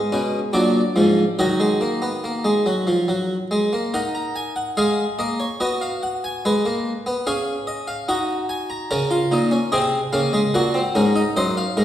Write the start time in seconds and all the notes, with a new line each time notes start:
Already playing: G#3 D#5
0.12 B2 C#4
0.53 A#2 F#3 D4 D5
0.96 G#2 F3
1.39 D#3 F#3 F#4 D#5
1.60 G#3
1.81 A#3
2.02 B3
2.24 A#3
2.44 G#3
2.66 F#3
2.87 F3
3.08 F#3
3.51 G#3
3.73 A#3
3.94 D#4 A#4 F#5
4.15 A#5
4.36 G#5
4.56 F#5
4.77 G#3 G#4 F5
5.19 A#3 D#5
5.40 C#5
5.60 B3 F#4 D#5
5.81 F5
6.03 F#5
6.24 G#5
6.45 G#3 B4
6.65 A#3
7.06 B3
7.27 C#4 G#4 F5
7.67 D#5
7.88 F5
8.09 D#4 F#4 F#5
8.49 G#5
8.70 A#5
8.91 C#3 C#4 A#4 A#5
9.11 F4
9.32 A#2 D#4
9.51 C#4
9.72 C3 C4 G#4 D#5
10.13 C#3 A#3 F5
10.33 G#3
10.54 A#2 A#3 F#4 F#5
10.74 C4
10.95 G#2 C#4 A#4
11.15 D#4
11.36 F#2 C5 D#5
11.57 F5
11.77 G#2 A#4